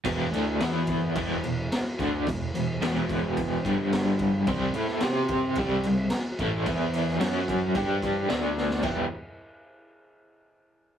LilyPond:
<<
  \new Staff \with { instrumentName = "Overdriven electric guitar" } { \clef bass \time 4/4 \key e \minor \tempo 4 = 109 <e, b, e>8 <d a d'>8 <e b e'>4 <e, b, e>8 <e, b,>8 r8 <d a d'>8 | <e, b,>8 <e, b,>8 <e, b, e>4. <g, d g>4. | <c g c'>8 <a e' a'>8 <c' g' c''>4 <c g c'>8 <c g>8 r8 <a, e a>8 | <e b e'>4 <fis cis' fis'>4 <g d' g'>4 <d a d'>4 |
<e b e' g'>8 r2. r8 | }
  \new Staff \with { instrumentName = "Picked electric bass" } { \clef bass \time 4/4 \key e \minor e,,8 d,8 e,4 e,,8 e,,8 r8 d,8 | e,,8 e,,8 e,,4. g,,4. | c,8 a,8 c4 c,8 c,8 r8 a,,8 | e,4 fis,4 g,4 d,4 |
e,,8 r2. r8 | }
  \new DrumStaff \with { instrumentName = "Drums" } \drummode { \time 4/4 <cymc bd>8 cymc8 <cymc sn>8 <cymc bd>8 <cymc bd>8 cymc8 <cymc sn>8 <cymc bd>8 | <cymc bd>8 cymc8 <cymc sn>8 <cymc bd>8 <cymc bd>8 <cymc bd>8 <cymc sn>8 <cymc bd>8 | <cymc bd>8 cymc16 sn16 <cymc sn>8 <cymc bd>8 <cymc bd>8 cymc8 <cymc sn>8 <cymc bd>8 | <cymc bd>8 cymc16 sn16 <cymc sn>8 <cymc bd>8 <cymc bd>8 <cymc bd>8 <cymc sn>8 sn16 sn16 |
<cymc bd>4 r4 r4 r4 | }
>>